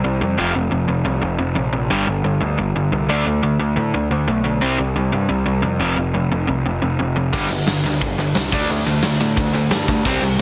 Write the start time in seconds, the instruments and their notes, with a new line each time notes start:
0.04 picked electric bass C2, overdriven electric guitar C3 G3
0.21 picked electric bass F2, overdriven electric guitar C3 G3
0.38 picked electric bass F1, overdriven electric guitar F2 C3 F3
0.55 picked electric bass F1, overdriven electric guitar F2 C3
0.71 picked electric bass F1, overdriven electric guitar F2 C3
0.88 picked electric bass F1, overdriven electric guitar F2 C3
1.05 picked electric bass C2, overdriven electric guitar F2 C3
1.22 picked electric bass F1, overdriven electric guitar F2 C3
1.38 picked electric bass F1, overdriven electric guitar F2 C3
1.55 picked electric bass A#1, overdriven electric guitar F2 C3
1.73 overdriven electric guitar F2 C3
1.90 picked electric bass G1, overdriven electric guitar G2 D3 G3
2.07 picked electric bass G1, overdriven electric guitar G2 D3
2.24 picked electric bass G1, overdriven electric guitar G2 D3
2.41 picked electric bass D2, overdriven electric guitar G2 D3
2.58 picked electric bass G1, overdriven electric guitar G2 D3
2.75 picked electric bass G1, overdriven electric guitar G2 D3
2.92 picked electric bass C2, overdriven electric guitar G2 D3
3.09 picked electric bass D2, overdriven electric guitar D3 A3 D4
3.26 picked electric bass D2, overdriven electric guitar D3 A3
3.43 picked electric bass D2, overdriven electric guitar D3 A3
3.60 picked electric bass D2, overdriven electric guitar D3 A3
3.76 picked electric bass A2, overdriven electric guitar D3 A3
3.94 picked electric bass D2, overdriven electric guitar D3 A3
4.10 picked electric bass D2, overdriven electric guitar D3 A3
4.28 picked electric bass B1, overdriven electric guitar D3 A3
4.44 overdriven electric guitar D3 A3
4.61 picked electric bass C2, overdriven electric guitar C3 G3 C4
4.79 picked electric bass C2, overdriven electric guitar C3 G3
4.96 picked electric bass C2, overdriven electric guitar C3 G3
5.12 picked electric bass G2, overdriven electric guitar C3 G3
5.29 picked electric bass C2, overdriven electric guitar C3 G3
5.46 picked electric bass C2, overdriven electric guitar C3 G3
5.62 picked electric bass F2, overdriven electric guitar C3 G3
5.79 picked electric bass F1, overdriven electric guitar F2 C3 F3
5.97 picked electric bass F1, overdriven electric guitar F2 C3
6.14 picked electric bass F1, overdriven electric guitar F2 C3
6.32 picked electric bass F1, overdriven electric guitar F2 C3
6.47 picked electric bass C2, overdriven electric guitar F2 C3
6.65 picked electric bass F1, overdriven electric guitar F2 C3
6.82 picked electric bass F1, overdriven electric guitar F2 C3
6.99 picked electric bass F1, overdriven electric guitar F2 C3
7.16 overdriven electric guitar F2 C3
7.33 picked electric bass G1, overdriven electric guitar G2 D3 G3, kick, crash
7.50 picked electric bass G1, overdriven electric guitar G2 D3
7.67 picked electric bass G1, overdriven electric guitar G2 D3, snare, open hi-hat
7.84 picked electric bass D2, overdriven electric guitar G2 D3
8.01 picked electric bass G1, overdriven electric guitar G2 D3, kick, open hi-hat
8.18 picked electric bass G1, overdriven electric guitar G2 D3
8.35 picked electric bass C2, overdriven electric guitar G2 D3, snare, open hi-hat
8.52 picked electric bass D2, overdriven electric guitar D3 A3 D4, kick, crash
8.70 picked electric bass D2, overdriven electric guitar D3 A3
8.86 picked electric bass D2, overdriven electric guitar D3 A3
9.03 picked electric bass D2, overdriven electric guitar D3 A3, snare, open hi-hat
9.20 picked electric bass A2, overdriven electric guitar D3 A3
9.36 picked electric bass D2, overdriven electric guitar D3 A3, kick, open hi-hat
9.53 picked electric bass D2, overdriven electric guitar D3 A3
9.71 picked electric bass G2, overdriven electric guitar D3 A3, snare, open hi-hat
9.88 overdriven electric guitar D3 A3, kick
10.05 picked electric bass C2, overdriven electric guitar C3 G3 C4, kick, crash
10.22 picked electric bass C2, overdriven electric guitar C3 G3